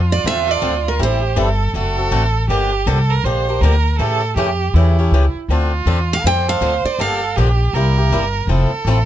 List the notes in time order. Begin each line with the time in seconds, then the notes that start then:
Already playing: F2 F4
0.12 D5
0.24 E2 D3 F3 C4 D4 A4 E5
0.47 C4 D4 A4 D5
0.62 D2 D3 F3 C4 D4 A4
0.88 A#4
0.99 A1 E3 G3 C4 E4 G4 A4 C5
1.36 G1 E3 G3 C4 E4 A4
1.74 F#1 D3 A3 C4 F#4 A4
1.97 C4 F#4 A4
2.11 A1 D3 A3 C4 F#4 A4
2.48 G1 D3 F3 A#3 D4 G4
2.86 C2 D3 F3 A#3 D4 G4 A4
3.10 A#4
3.24 A#1 D3 F3 A#3 D4 G4 C5
3.49 A#3 D4 G4
3.61 D2 D3 F3 A#3 D4 G4 A#4
3.98 A2 C#3 E3 A3 C#4 G4 A4
4.36 F2 C#3 E3 A3 C#4 G4
4.74 E2 C#3 E3 A3 C#4 E4 G4
4.99 A3 C#4 G4
5.11 C#2 C#3 E3 A3 C#4 G4
5.48 D2 D3 F3 C4 D4 F4 A4
5.86 E2 D3 F3 C4 D4 A4
6.13 F5
6.24 F2 D3 F3 C4 D4 A4 C5 G5
6.48 C4 D4 A4 F5
6.61 D2 D3 F3 C4 D4 A4
6.84 D5, muted upright bass stroke
6.99 G1 D3 F3 A#3 D4 G4 A4 F5
7.36 A#1 D3 F3 A#3 D4 G4
7.73 C2 C3 G3 A#3 E4 G4 A#4
7.98 A#3 E4 G4
8.10 G1 C3 G3 A#3 E4 G4
8.47 F1 F3 A3 C4 E4 A4
8.85 A1 F3 A3 C4 E4 A4